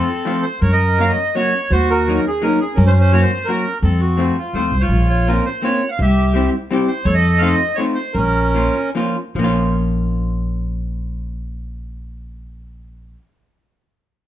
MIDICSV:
0, 0, Header, 1, 4, 480
1, 0, Start_track
1, 0, Key_signature, -5, "minor"
1, 0, Tempo, 359281
1, 818, Time_signature, 3, 2, 24, 8
1, 10887, Tempo, 394997
1, 11847, Tempo, 417537
1, 17978, End_track
2, 0, Start_track
2, 0, Title_t, "Accordion"
2, 0, Program_c, 0, 21
2, 0, Note_on_c, 0, 60, 72
2, 0, Note_on_c, 0, 69, 89
2, 509, Note_off_c, 0, 60, 0
2, 569, Note_on_c, 0, 72, 86
2, 607, Note_off_c, 0, 69, 0
2, 798, Note_off_c, 0, 72, 0
2, 817, Note_on_c, 0, 70, 61
2, 839, Note_on_c, 0, 73, 83
2, 954, Note_off_c, 0, 73, 0
2, 970, Note_on_c, 0, 75, 100
2, 1328, Note_off_c, 0, 75, 0
2, 1339, Note_on_c, 0, 77, 109
2, 1444, Note_off_c, 0, 77, 0
2, 1444, Note_on_c, 0, 75, 99
2, 1492, Note_off_c, 0, 70, 0
2, 1803, Note_off_c, 0, 75, 0
2, 1811, Note_on_c, 0, 73, 102
2, 2290, Note_off_c, 0, 73, 0
2, 2294, Note_on_c, 0, 66, 67
2, 2295, Note_on_c, 0, 72, 91
2, 2525, Note_off_c, 0, 72, 0
2, 2543, Note_on_c, 0, 70, 92
2, 2943, Note_off_c, 0, 66, 0
2, 3010, Note_off_c, 0, 70, 0
2, 3040, Note_on_c, 0, 68, 88
2, 3248, Note_off_c, 0, 68, 0
2, 3251, Note_on_c, 0, 70, 98
2, 3471, Note_off_c, 0, 70, 0
2, 3481, Note_on_c, 0, 68, 82
2, 3669, Note_on_c, 0, 61, 65
2, 3675, Note_on_c, 0, 70, 78
2, 3704, Note_off_c, 0, 68, 0
2, 3798, Note_off_c, 0, 70, 0
2, 3832, Note_on_c, 0, 72, 92
2, 3889, Note_off_c, 0, 72, 0
2, 3909, Note_on_c, 0, 72, 88
2, 3985, Note_off_c, 0, 72, 0
2, 4018, Note_on_c, 0, 72, 86
2, 4177, Note_off_c, 0, 72, 0
2, 4182, Note_on_c, 0, 73, 109
2, 4287, Note_off_c, 0, 73, 0
2, 4298, Note_on_c, 0, 72, 86
2, 4331, Note_off_c, 0, 61, 0
2, 4603, Note_on_c, 0, 70, 106
2, 4648, Note_off_c, 0, 72, 0
2, 5053, Note_off_c, 0, 70, 0
2, 5116, Note_on_c, 0, 60, 68
2, 5125, Note_on_c, 0, 69, 76
2, 5344, Note_on_c, 0, 66, 79
2, 5355, Note_off_c, 0, 69, 0
2, 5778, Note_off_c, 0, 60, 0
2, 5838, Note_off_c, 0, 66, 0
2, 5847, Note_on_c, 0, 65, 69
2, 6063, Note_on_c, 0, 72, 85
2, 6085, Note_off_c, 0, 65, 0
2, 6420, Note_on_c, 0, 73, 79
2, 6432, Note_on_c, 0, 65, 61
2, 6442, Note_off_c, 0, 72, 0
2, 6789, Note_off_c, 0, 73, 0
2, 6809, Note_on_c, 0, 73, 79
2, 7042, Note_on_c, 0, 70, 91
2, 7051, Note_off_c, 0, 73, 0
2, 7107, Note_off_c, 0, 65, 0
2, 7288, Note_off_c, 0, 70, 0
2, 7290, Note_on_c, 0, 72, 80
2, 7529, Note_on_c, 0, 73, 91
2, 7531, Note_off_c, 0, 72, 0
2, 7862, Note_on_c, 0, 78, 62
2, 7864, Note_off_c, 0, 73, 0
2, 7889, Note_off_c, 0, 78, 0
2, 7894, Note_on_c, 0, 77, 81
2, 8010, Note_off_c, 0, 77, 0
2, 8036, Note_on_c, 0, 67, 60
2, 8039, Note_on_c, 0, 76, 88
2, 8685, Note_off_c, 0, 67, 0
2, 8686, Note_off_c, 0, 76, 0
2, 9189, Note_on_c, 0, 72, 85
2, 9416, Note_on_c, 0, 73, 100
2, 9430, Note_off_c, 0, 72, 0
2, 9444, Note_on_c, 0, 69, 72
2, 9539, Note_on_c, 0, 75, 111
2, 9540, Note_off_c, 0, 73, 0
2, 9862, Note_on_c, 0, 77, 111
2, 9905, Note_off_c, 0, 75, 0
2, 9972, Note_on_c, 0, 75, 108
2, 10003, Note_off_c, 0, 77, 0
2, 10097, Note_off_c, 0, 69, 0
2, 10358, Note_on_c, 0, 73, 91
2, 10372, Note_off_c, 0, 75, 0
2, 10476, Note_off_c, 0, 73, 0
2, 10614, Note_on_c, 0, 72, 89
2, 10871, Note_on_c, 0, 70, 89
2, 10884, Note_off_c, 0, 72, 0
2, 10901, Note_on_c, 0, 61, 55
2, 11790, Note_off_c, 0, 70, 0
2, 11804, Note_off_c, 0, 61, 0
2, 17978, End_track
3, 0, Start_track
3, 0, Title_t, "Hollow-body jazz guitar"
3, 0, Program_c, 1, 26
3, 335, Note_on_c, 1, 53, 66
3, 340, Note_on_c, 1, 57, 64
3, 352, Note_on_c, 1, 60, 58
3, 361, Note_on_c, 1, 65, 78
3, 577, Note_off_c, 1, 53, 0
3, 577, Note_off_c, 1, 57, 0
3, 585, Note_off_c, 1, 60, 0
3, 590, Note_off_c, 1, 65, 0
3, 1312, Note_on_c, 1, 54, 58
3, 1323, Note_on_c, 1, 58, 51
3, 1330, Note_on_c, 1, 61, 50
3, 1342, Note_on_c, 1, 66, 52
3, 1548, Note_off_c, 1, 54, 0
3, 1553, Note_off_c, 1, 58, 0
3, 1558, Note_off_c, 1, 61, 0
3, 1560, Note_off_c, 1, 66, 0
3, 1804, Note_on_c, 1, 54, 60
3, 1811, Note_on_c, 1, 58, 54
3, 1819, Note_on_c, 1, 61, 53
3, 1830, Note_on_c, 1, 66, 70
3, 2033, Note_off_c, 1, 54, 0
3, 2036, Note_off_c, 1, 58, 0
3, 2041, Note_off_c, 1, 61, 0
3, 2046, Note_off_c, 1, 66, 0
3, 2772, Note_on_c, 1, 54, 67
3, 2783, Note_on_c, 1, 58, 64
3, 2797, Note_on_c, 1, 63, 72
3, 2799, Note_on_c, 1, 61, 50
3, 2993, Note_off_c, 1, 54, 0
3, 3000, Note_off_c, 1, 58, 0
3, 3001, Note_off_c, 1, 61, 0
3, 3005, Note_off_c, 1, 63, 0
3, 3227, Note_on_c, 1, 54, 64
3, 3233, Note_on_c, 1, 58, 64
3, 3248, Note_on_c, 1, 63, 77
3, 3258, Note_on_c, 1, 61, 53
3, 3453, Note_off_c, 1, 54, 0
3, 3456, Note_off_c, 1, 58, 0
3, 3464, Note_off_c, 1, 63, 0
3, 3467, Note_off_c, 1, 61, 0
3, 4176, Note_on_c, 1, 54, 69
3, 4187, Note_on_c, 1, 58, 62
3, 4196, Note_on_c, 1, 61, 53
3, 4201, Note_on_c, 1, 66, 78
3, 4399, Note_off_c, 1, 54, 0
3, 4406, Note_off_c, 1, 58, 0
3, 4407, Note_off_c, 1, 61, 0
3, 4412, Note_off_c, 1, 66, 0
3, 4651, Note_on_c, 1, 54, 60
3, 4658, Note_on_c, 1, 58, 59
3, 4669, Note_on_c, 1, 61, 49
3, 4673, Note_on_c, 1, 66, 76
3, 4874, Note_off_c, 1, 54, 0
3, 4879, Note_off_c, 1, 58, 0
3, 4881, Note_off_c, 1, 61, 0
3, 4885, Note_off_c, 1, 66, 0
3, 5571, Note_on_c, 1, 53, 54
3, 5581, Note_on_c, 1, 57, 57
3, 5594, Note_on_c, 1, 60, 60
3, 5604, Note_on_c, 1, 65, 55
3, 5816, Note_off_c, 1, 53, 0
3, 5821, Note_off_c, 1, 57, 0
3, 5828, Note_off_c, 1, 60, 0
3, 5830, Note_off_c, 1, 65, 0
3, 6073, Note_on_c, 1, 53, 59
3, 6084, Note_on_c, 1, 57, 51
3, 6095, Note_on_c, 1, 60, 47
3, 6106, Note_on_c, 1, 65, 69
3, 6314, Note_off_c, 1, 53, 0
3, 6319, Note_off_c, 1, 57, 0
3, 6324, Note_off_c, 1, 60, 0
3, 6330, Note_off_c, 1, 65, 0
3, 7055, Note_on_c, 1, 58, 60
3, 7057, Note_on_c, 1, 60, 51
3, 7070, Note_on_c, 1, 61, 53
3, 7078, Note_on_c, 1, 65, 73
3, 7287, Note_off_c, 1, 58, 0
3, 7290, Note_off_c, 1, 60, 0
3, 7292, Note_off_c, 1, 61, 0
3, 7298, Note_off_c, 1, 65, 0
3, 7513, Note_on_c, 1, 58, 64
3, 7522, Note_on_c, 1, 60, 61
3, 7531, Note_on_c, 1, 61, 53
3, 7542, Note_on_c, 1, 65, 74
3, 7756, Note_off_c, 1, 58, 0
3, 7760, Note_off_c, 1, 60, 0
3, 7765, Note_off_c, 1, 61, 0
3, 7770, Note_off_c, 1, 65, 0
3, 8466, Note_on_c, 1, 55, 65
3, 8487, Note_on_c, 1, 60, 62
3, 8493, Note_on_c, 1, 64, 62
3, 8505, Note_on_c, 1, 67, 64
3, 8709, Note_off_c, 1, 55, 0
3, 8720, Note_off_c, 1, 60, 0
3, 8723, Note_off_c, 1, 64, 0
3, 8729, Note_off_c, 1, 67, 0
3, 8959, Note_on_c, 1, 55, 81
3, 8967, Note_on_c, 1, 60, 68
3, 8975, Note_on_c, 1, 64, 66
3, 8993, Note_on_c, 1, 67, 93
3, 9192, Note_off_c, 1, 55, 0
3, 9196, Note_off_c, 1, 60, 0
3, 9201, Note_off_c, 1, 64, 0
3, 9210, Note_off_c, 1, 67, 0
3, 9895, Note_on_c, 1, 57, 67
3, 9907, Note_on_c, 1, 60, 61
3, 9914, Note_on_c, 1, 63, 52
3, 9923, Note_on_c, 1, 65, 71
3, 10136, Note_off_c, 1, 57, 0
3, 10142, Note_off_c, 1, 60, 0
3, 10143, Note_off_c, 1, 63, 0
3, 10150, Note_off_c, 1, 65, 0
3, 10390, Note_on_c, 1, 57, 67
3, 10396, Note_on_c, 1, 60, 52
3, 10404, Note_on_c, 1, 63, 47
3, 10406, Note_on_c, 1, 65, 62
3, 10636, Note_off_c, 1, 57, 0
3, 10640, Note_off_c, 1, 60, 0
3, 10640, Note_off_c, 1, 63, 0
3, 10644, Note_off_c, 1, 65, 0
3, 11365, Note_on_c, 1, 53, 54
3, 11376, Note_on_c, 1, 58, 47
3, 11381, Note_on_c, 1, 61, 58
3, 11390, Note_on_c, 1, 65, 65
3, 11602, Note_off_c, 1, 53, 0
3, 11604, Note_off_c, 1, 58, 0
3, 11609, Note_off_c, 1, 61, 0
3, 11613, Note_off_c, 1, 65, 0
3, 11857, Note_on_c, 1, 53, 67
3, 11864, Note_on_c, 1, 58, 70
3, 11875, Note_on_c, 1, 61, 66
3, 11879, Note_on_c, 1, 65, 80
3, 12092, Note_off_c, 1, 53, 0
3, 12096, Note_off_c, 1, 58, 0
3, 12101, Note_off_c, 1, 61, 0
3, 12104, Note_off_c, 1, 65, 0
3, 12329, Note_on_c, 1, 53, 92
3, 12367, Note_on_c, 1, 58, 81
3, 12392, Note_on_c, 1, 61, 83
3, 12424, Note_on_c, 1, 65, 85
3, 16673, Note_off_c, 1, 53, 0
3, 16711, Note_off_c, 1, 58, 0
3, 16736, Note_off_c, 1, 61, 0
3, 16768, Note_off_c, 1, 65, 0
3, 17978, End_track
4, 0, Start_track
4, 0, Title_t, "Upright bass"
4, 0, Program_c, 2, 32
4, 822, Note_on_c, 2, 42, 102
4, 1448, Note_off_c, 2, 42, 0
4, 2278, Note_on_c, 2, 39, 98
4, 2890, Note_off_c, 2, 39, 0
4, 3706, Note_on_c, 2, 42, 121
4, 4310, Note_off_c, 2, 42, 0
4, 5110, Note_on_c, 2, 41, 102
4, 5734, Note_off_c, 2, 41, 0
4, 6056, Note_on_c, 2, 39, 66
4, 6280, Note_off_c, 2, 39, 0
4, 6303, Note_on_c, 2, 36, 89
4, 6524, Note_off_c, 2, 36, 0
4, 6530, Note_on_c, 2, 34, 104
4, 7165, Note_off_c, 2, 34, 0
4, 8001, Note_on_c, 2, 36, 102
4, 8620, Note_off_c, 2, 36, 0
4, 9423, Note_on_c, 2, 41, 109
4, 10046, Note_off_c, 2, 41, 0
4, 10883, Note_on_c, 2, 34, 97
4, 11508, Note_off_c, 2, 34, 0
4, 12321, Note_on_c, 2, 34, 89
4, 16665, Note_off_c, 2, 34, 0
4, 17978, End_track
0, 0, End_of_file